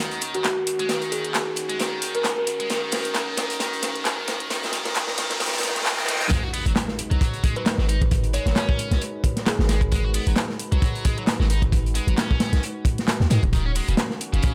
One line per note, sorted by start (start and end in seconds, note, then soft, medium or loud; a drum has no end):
0.00 6.27 D#2 medium
0.00 0.44 D#3 medium
0.00 6.27 D#3 medium
0.00 6.27 C#4 medium
0.00 6.27 F#4 medium
0.00 riser medium
0.11 closed hi-hat soft
0.21 closed hi-hat medium
0.34 0.41 F#4 medium
0.34 closed hi-hat soft
0.44 0.53 F#4 medium
0.44 snare medium
0.44 clap loud
0.44 closed hi-hat medium
0.44 closed hi-hat soft
0.67 closed hi-hat medium
0.79 0.88 G#3 medium
0.79 closed hi-hat soft
0.89 1.34 D#3 loud
0.89 snare medium
0.89 closed hi-hat medium
0.89 closed hi-hat soft
1.02 closed hi-hat soft
1.12 1.22 G#4 medium
1.12 closed hi-hat medium
1.24 closed hi-hat soft
1.34 snare medium
1.34 clap loud
1.34 closed hi-hat soft
1.34 closed hi-hat medium
1.56 closed hi-hat medium
1.69 1.78 G#3 medium
1.69 closed hi-hat soft
1.79 2.24 D#3 loud
1.79 snare medium
1.79 closed hi-hat soft
1.79 closed hi-hat loud
2.02 closed hi-hat medium
2.15 2.35 A#4 medium
2.15 closed hi-hat soft
2.24 snare medium
2.24 clap loud
2.24 closed hi-hat soft
2.24 closed hi-hat medium
2.38 2.44 A#4 medium
2.47 2.56 A#4 medium
2.47 closed hi-hat medium
2.60 2.68 G#3 medium
2.60 closed hi-hat soft
2.70 3.13 D#3 loud
2.70 snare medium
2.70 closed hi-hat soft
2.70 closed hi-hat medium
2.91 snare medium
2.91 closed hi-hat medium
2.91 open hi-hat medium
3.04 closed hi-hat soft
3.14 3.59 D#3 loud
3.14 snare medium
3.14 clap loud
3.14 closed hi-hat medium
3.14 closed hi-hat soft
3.37 snare medium
3.37 closed hi-hat medium
3.50 closed hi-hat soft
3.50 closed hi-hat medium
3.60 4.04 D#3 loud
3.60 snare medium
3.60 closed hi-hat soft
3.60 closed hi-hat loud
3.73 closed hi-hat soft
3.82 snare medium
3.82 closed hi-hat medium
3.96 closed hi-hat soft
4.05 4.49 D#3 loud
4.05 snare medium
4.05 clap loud
4.05 closed hi-hat medium
4.05 closed hi-hat soft
4.28 snare loud
4.28 closed hi-hat medium
4.40 closed hi-hat soft
4.50 4.72 D#3 loud
4.50 snare medium
4.50 closed hi-hat soft
4.50 closed hi-hat medium
4.63 snare medium
4.63 closed hi-hat soft
4.72 4.94 D#3 loud
4.72 snare medium
4.72 closed hi-hat medium
4.85 snare medium
4.85 closed hi-hat soft
4.95 5.17 D#3 loud
4.95 snare loud
4.95 clap loud
4.95 closed hi-hat medium
4.95 closed hi-hat soft
5.07 snare medium
5.18 5.39 D#3 loud
5.18 snare loud
5.18 closed hi-hat medium
5.30 snare medium
5.30 closed hi-hat soft
5.40 5.62 D#3 loud
5.40 snare loud
5.40 closed hi-hat medium
5.40 closed hi-hat soft
5.40 reverse cymbal medium
5.46 snare medium
5.46 closed hi-hat medium
5.53 snare medium
5.53 closed hi-hat medium
5.58 snare medium
5.58 closed hi-hat medium
5.63 5.84 D#3 loud
5.63 snare loud
5.63 closed hi-hat medium
5.69 snare medium
5.75 snare medium
5.75 closed hi-hat soft
5.82 snare loud
5.86 6.07 D#3 loud
5.86 snare loud
5.86 clap loud
5.86 closed hi-hat soft
5.86 closed hi-hat medium
5.92 snare loud
5.98 snare medium
5.98 closed hi-hat soft
6.04 snare loud
6.08 6.29 D#3 loud
6.08 snare loud
6.08 closed hi-hat medium
6.15 snare loud
6.21 snare loud
6.21 closed hi-hat medium
6.21 closed hi-hat soft
6.26 snare loud
6.31 6.42 G#3 medium
6.31 13.49 G#3 medium
6.31 13.49 D#4 medium
6.31 14.54 F#4 medium
6.31 13.49 B4 medium
6.31 kick loud
6.31 closed hi-hat soft
6.31 closed hi-hat medium
6.31 impact medium
6.43 6.49 F#4 loud
6.53 6.64 B3 medium
6.53 closed hi-hat medium
6.53 open hi-hat medium
6.66 6.72 G#1 loud
6.66 6.71 F#3 medium
6.66 closed hi-hat soft
6.76 snare loud
6.76 clap loud
6.76 closed hi-hat soft
6.76 closed hi-hat medium
6.88 snare soft
6.99 closed hi-hat medium
7.11 7.18 B1 loud
7.11 7.43 F#3 medium
7.11 closed hi-hat soft
7.21 kick loud
7.21 closed hi-hat soft
7.21 closed hi-hat medium
7.33 closed hi-hat soft
7.44 7.55 G#3 loud
7.44 kick medium
7.44 closed hi-hat medium
7.56 7.62 F#3 medium
7.56 7.63 B4 medium
7.56 closed hi-hat soft
7.66 7.74 B4 medium
7.66 snare loud
7.66 clap loud
7.66 closed hi-hat medium
7.66 closed hi-hat soft
7.78 8.39 G#1 loud
7.78 7.84 F#3 medium
7.78 snare medium
7.89 8.00 D#4 loud
7.89 closed hi-hat medium
8.02 kick medium
8.02 closed hi-hat soft
8.11 kick loud
8.11 closed hi-hat medium
8.11 closed hi-hat soft
8.24 closed hi-hat soft
8.33 8.45 G#3 loud
8.33 8.44 C#5 medium
8.33 closed hi-hat medium
8.46 8.53 G#1 loud
8.46 8.52 F#3 medium
8.46 8.53 C#5 medium
8.46 snare soft
8.46 closed hi-hat soft
8.56 9.01 C#4 medium
8.56 8.65 C#5 medium
8.56 snare loud
8.56 clap loud
8.56 closed hi-hat medium
8.56 closed hi-hat soft
8.69 kick loud
8.79 closed hi-hat medium
8.91 8.98 B1 loud
8.91 snare soft
8.91 closed hi-hat soft
9.01 closed hi-hat medium
9.01 closed hi-hat soft
9.24 kick medium
9.24 closed hi-hat medium
9.37 snare soft
9.37 closed hi-hat soft
9.46 9.55 G#4 medium
9.46 snare loud
9.46 clap loud
9.46 closed hi-hat medium
9.46 closed hi-hat soft
9.59 10.20 G#1 loud
9.59 9.66 G#4 medium
9.59 snare medium
9.69 9.80 G#3 loud
9.69 snare medium
9.69 closed hi-hat medium
9.81 kick medium
9.81 closed hi-hat soft
9.92 10.03 G#3 medium
9.92 kick loud
9.92 closed hi-hat medium
9.92 closed hi-hat soft
10.05 10.10 F#4 loud
10.14 10.25 B3 medium
10.14 closed hi-hat medium
10.14 open hi-hat medium
10.27 10.33 G#1 loud
10.27 10.32 F#3 medium
10.27 closed hi-hat soft
10.36 snare loud
10.36 clap loud
10.36 closed hi-hat medium
10.36 closed hi-hat soft
10.49 snare soft
10.59 closed hi-hat medium
10.72 10.79 B1 loud
10.72 11.04 F#3 medium
10.72 closed hi-hat soft
10.82 kick loud
10.82 closed hi-hat soft
10.82 closed hi-hat medium
10.95 closed hi-hat soft
11.05 11.16 G#3 loud
11.05 kick loud
11.05 closed hi-hat medium
11.18 11.23 F#3 medium
11.18 closed hi-hat soft
11.27 snare loud
11.27 clap loud
11.27 closed hi-hat soft
11.27 closed hi-hat medium
11.40 12.00 G#1 loud
11.40 11.45 F#3 medium
11.40 snare soft
11.50 11.61 D#4 loud
11.50 closed hi-hat medium
11.62 kick medium
11.62 closed hi-hat soft
11.72 kick loud
11.72 closed hi-hat soft
11.72 closed hi-hat medium
11.86 closed hi-hat soft
11.95 12.06 G#3 loud
11.95 closed hi-hat medium
12.07 12.14 G#1 loud
12.07 12.13 F#3 medium
12.07 closed hi-hat soft
12.18 12.62 C#4 medium
12.18 snare loud
12.18 clap loud
12.18 closed hi-hat medium
12.18 closed hi-hat soft
12.31 kick medium
12.40 snare loud
12.40 closed hi-hat medium
12.53 12.59 B1 loud
12.53 snare soft
12.53 closed hi-hat soft
12.63 closed hi-hat soft
12.63 closed hi-hat medium
12.85 kick medium
12.85 closed hi-hat medium
12.98 snare soft
12.98 closed hi-hat soft
13.08 snare loud
13.08 clap loud
13.08 closed hi-hat soft
13.08 closed hi-hat medium
13.20 13.27 D#2 medium
13.20 snare medium
13.30 13.39 G#2 loud
13.30 13.41 G#3 loud
13.30 snare medium
13.30 closed hi-hat medium
13.43 13.81 D#1 loud
13.43 kick loud
13.43 closed hi-hat soft
13.53 13.64 D#3 medium
13.53 14.54 D#3 medium
13.53 14.54 A#3 medium
13.53 14.54 C#4 medium
13.53 kick loud
13.53 closed hi-hat loud
13.53 closed hi-hat soft
13.66 13.71 C#4 loud
13.75 13.86 G#3 medium
13.75 closed hi-hat medium
13.75 open hi-hat medium
13.88 13.95 D#1 loud
13.88 13.93 C#3 medium
13.88 closed hi-hat soft
13.97 snare loud
13.97 clap loud
13.97 closed hi-hat medium
13.97 closed hi-hat soft
14.10 snare soft
14.21 closed hi-hat medium
14.33 14.40 F#1 loud
14.33 14.54 C#3 medium
14.33 closed hi-hat soft
14.42 kick loud
14.42 closed hi-hat medium
14.42 closed hi-hat soft